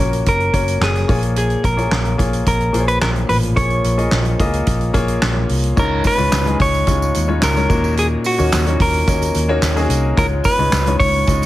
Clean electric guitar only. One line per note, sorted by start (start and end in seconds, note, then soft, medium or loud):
0.00 0.24 A#4 medium
0.29 0.84 A#4 medium
0.83 1.21 G#4 medium
1.38 1.66 G#4 medium
1.65 2.16 A#4 medium
2.48 2.88 A#4 medium
2.88 3.01 B4 medium
3.02 3.09 A#4 medium
3.29 3.37 B4 medium
3.56 5.18 C#5 medium
5.79 6.07 A#4 loud
6.07 6.61 B4 loud
6.62 7.39 C#5 loud
7.43 7.94 A#4 medium
7.99 8.06 G#4 medium
8.26 8.82 F#4 medium
8.82 9.87 A#4 medium
10.18 10.26 A#4 loud
10.45 10.96 B4 loud
10.99 11.46 C#5 loud